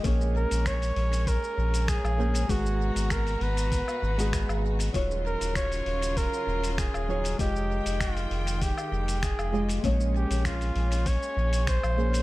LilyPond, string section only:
\new Staff \with { instrumentName = "String section" } { \time 4/4 \key bes \phrygian \tempo 4 = 98 << { des'1 | <ces ges'>1 | <des f'>1 | <ees g''>1 |
des'1 | } \\ { aes1 | bes''1 | ges1 | aes1~ |
aes1 | } >> }